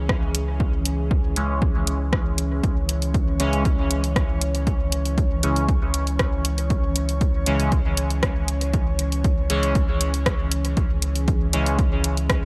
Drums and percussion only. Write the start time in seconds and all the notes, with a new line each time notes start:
0.09 kick, cross-stick
0.35 closed hi-hat
0.60 kick
0.85 closed hi-hat
1.11 kick
1.36 closed hi-hat
1.62 kick
1.87 closed hi-hat
2.13 kick, cross-stick
2.38 closed hi-hat
2.64 kick, closed hi-hat
2.89 closed hi-hat
3.02 closed hi-hat
3.14 kick, closed hi-hat
3.40 closed hi-hat
3.53 closed hi-hat
3.65 kick, closed hi-hat
3.91 closed hi-hat
4.04 closed hi-hat
4.16 kick, cross-stick, closed hi-hat
4.41 closed hi-hat
4.55 closed hi-hat
4.67 kick, closed hi-hat
4.92 closed hi-hat
5.05 closed hi-hat
5.18 kick, closed hi-hat
5.43 closed hi-hat
5.56 closed hi-hat
5.69 kick, closed hi-hat
5.94 closed hi-hat
6.07 closed hi-hat
6.19 kick, cross-stick, closed hi-hat
6.45 closed hi-hat
6.58 closed hi-hat
6.70 kick, closed hi-hat
6.96 closed hi-hat
7.09 closed hi-hat
7.21 kick, closed hi-hat
7.46 closed hi-hat
7.60 closed hi-hat
7.72 kick, closed hi-hat
7.97 closed hi-hat
8.10 closed hi-hat
8.23 kick, cross-stick, closed hi-hat
8.48 closed hi-hat
8.61 closed hi-hat
8.74 kick, closed hi-hat
8.99 closed hi-hat
9.12 closed hi-hat
9.24 kick, closed hi-hat
9.50 closed hi-hat
9.63 closed hi-hat
9.75 kick, closed hi-hat
10.01 closed hi-hat
10.14 closed hi-hat
10.26 kick, cross-stick, closed hi-hat
10.52 closed hi-hat
10.65 closed hi-hat
10.77 kick, closed hi-hat
11.02 closed hi-hat
11.16 closed hi-hat
11.28 kick, closed hi-hat
11.53 closed hi-hat
11.66 closed hi-hat
11.79 kick, closed hi-hat
12.04 closed hi-hat
12.17 closed hi-hat
12.30 kick, cross-stick, closed hi-hat